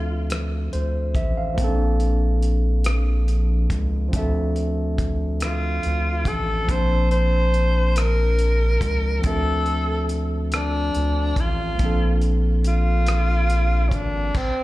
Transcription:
0.00 0.69 D2 loud
0.00 1.52 F3 soft
0.00 1.53 C4 soft
0.00 1.54 D4 soft
0.00 0.32 F4 medium
0.00 1.57 A4 medium
0.00 1.15 E5 soft
0.30 cross-stick medium
0.30 closed hi-hat medium
0.73 1.17 D2 medium
0.73 1.13 C5 medium
0.73 closed hi-hat soft
1.15 1.54 A1 medium
1.15 1.36 E5 medium
1.15 kick medium
1.15 closed hi-hat soft
1.37 1.78 F5 medium
1.54 4.07 F3 medium
1.54 4.08 A#3 medium
1.54 kick medium
1.54 closed hi-hat medium
1.59 3.67 A#1 medium
1.59 4.10 C4 medium
1.59 1.66 C#4 soft
1.64 4.13 D4 medium
1.64 4.12 A4 medium
2.00 closed hi-hat soft
2.42 closed hi-hat soft
2.84 cross-stick medium
2.84 closed hi-hat medium
3.28 closed hi-hat soft
3.70 4.09 C#2 medium
3.70 kick medium
3.70 closed hi-hat soft
4.09 6.62 F3 medium
4.09 6.63 C4 medium
4.13 5.80 D2 loud
4.13 6.65 D4 medium
4.13 6.66 E5 medium
4.13 kick medium
4.13 closed hi-hat medium
4.18 6.67 A4 medium
4.56 closed hi-hat soft
4.98 kick medium
4.98 closed hi-hat soft
5.40 6.29 F4 medium
5.40 cross-stick medium
5.40 closed hi-hat medium
5.83 6.28 D2 medium
5.83 closed hi-hat soft
6.25 6.65 A1 medium
6.25 6.72 A4 medium
6.25 kick medium
6.25 closed hi-hat soft
6.64 9.18 F3 soft
6.64 9.19 A#3 soft
6.69 8.78 A#1 loud
6.69 9.20 C4 soft
6.69 9.21 D4 soft
6.69 7.11 C5 medium
6.69 kick medium
6.69 closed hi-hat medium
6.74 9.23 A5 medium
7.11 7.99 C5 medium
7.11 closed hi-hat soft
7.54 closed hi-hat soft
7.96 9.27 A#4 medium
7.96 cross-stick medium
7.96 closed hi-hat medium
8.39 closed hi-hat soft
8.81 9.20 C#2 medium
8.81 kick medium
8.81 closed hi-hat soft
9.19 11.73 F3 medium
9.19 11.74 C4 soft
9.23 10.91 D2 medium
9.23 11.75 D4 soft
9.23 10.25 A4 medium
9.23 11.77 E5 soft
9.23 kick medium
9.23 closed hi-hat medium
9.29 11.78 A4 medium
9.66 closed hi-hat soft
10.09 closed hi-hat soft
10.52 11.41 D4 medium
10.52 cross-stick medium
10.52 closed hi-hat medium
10.95 11.34 D2 medium
10.95 closed hi-hat soft
11.36 11.76 A1 medium
11.36 12.23 F4 medium
11.36 kick medium
11.36 closed hi-hat soft
11.75 14.29 F3 medium
11.75 14.30 A#3 soft
11.75 closed hi-hat medium
11.79 13.94 A#1 medium
11.79 14.31 C4 soft
11.79 14.32 D4 soft
11.79 kick medium
11.85 14.34 A4 medium
12.21 closed hi-hat soft
12.64 13.90 F4 loud
12.64 closed hi-hat soft
13.06 cross-stick medium
13.06 closed hi-hat medium
13.50 closed hi-hat soft
13.88 13.97 C#4 medium
13.88 kick medium
13.88 closed hi-hat soft
13.93 14.31 G#1 medium
13.93 14.39 D4 medium
14.34 14.63 C4 medium
14.34 kick medium
14.34 crash medium

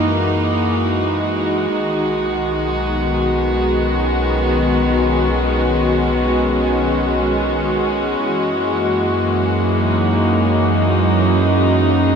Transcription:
0.00 1.68 F#2 medium
0.00 1.72 E3 medium
0.00 12.15 G#3 medium
0.00 1.72 A#3 medium
0.00 3.42 D#4 medium
0.00 12.15 F#4 medium
1.70 8.16 B1 medium
1.70 8.19 D#3 medium
2.87 8.19 B3 medium
3.88 10.80 C#4 medium
8.19 12.15 F#2 medium
8.19 12.15 E3 medium
8.19 12.15 F#3 medium
8.19 12.15 C#4 medium
8.47 12.15 A#3 medium
9.76 12.15 D#4 medium

